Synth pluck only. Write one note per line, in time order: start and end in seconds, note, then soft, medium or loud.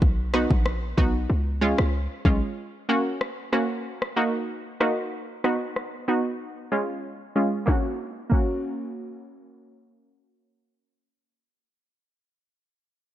0.34 0.47 B3 medium
0.34 0.47 D#4 medium
0.34 0.48 F#4 medium
0.97 1.11 B3 medium
0.97 1.11 D#4 medium
0.97 1.11 F#4 loud
1.61 1.75 G#3 medium
1.61 1.75 C#4 medium
1.61 1.75 F4 loud
2.25 2.39 G#3 medium
2.25 2.39 C#4 medium
2.25 2.39 F4 loud
2.89 3.02 A#3 medium
2.89 3.03 C#4 medium
2.89 3.03 F#4 medium
3.52 3.66 A#3 medium
3.52 3.66 C#4 medium
3.52 3.66 F#4 loud
4.16 4.30 A#3 medium
4.16 4.30 D#4 medium
4.16 4.30 F#4 loud
4.80 4.94 A#3 medium
4.80 4.94 D#4 medium
4.80 4.94 F#4 medium
5.44 5.58 B3 medium
5.44 5.58 D#4 medium
5.44 5.58 F#4 loud
6.08 6.22 B3 medium
6.08 6.22 D#4 medium
6.08 6.22 F#4 loud
6.72 6.85 G#3 medium
6.72 6.86 C#4 medium
6.72 6.86 F4 loud
7.36 7.49 G#3 medium
7.36 7.49 C#4 medium
7.36 7.50 F4 medium
7.66 7.85 A#3 medium
7.66 7.86 C#4 medium
7.70 7.87 F#4 medium
8.30 11.68 A#3 medium
8.30 11.69 C#4 medium
8.30 11.70 F#4 medium